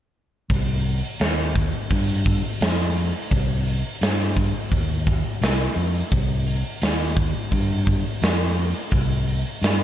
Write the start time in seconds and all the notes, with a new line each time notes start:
0.50 C2, kick, open hi-hat
0.85 open hi-hat
1.20 D#2, snare, open hi-hat
1.55 kick, open hi-hat
1.90 G2, kick, open hi-hat
2.26 kick, open hi-hat
2.61 F2, snare, open hi-hat
2.96 open hi-hat
3.31 C2, kick, open hi-hat
3.67 open hi-hat
4.01 G2, snare, open hi-hat
4.37 kick, open hi-hat
4.72 D#2, kick, open hi-hat
5.07 kick, open hi-hat
5.41 C2, snare, open hi-hat
5.76 F2, open hi-hat
6.12 C2, kick, open hi-hat
6.47 open hi-hat
6.82 D#2, snare, open hi-hat
7.16 kick, open hi-hat
7.51 G2, kick, open hi-hat
7.87 kick, open hi-hat
8.22 F2, snare, open hi-hat
8.57 open hi-hat
8.91 C2, kick, open hi-hat
9.27 open hi-hat
9.62 G2, snare, open hi-hat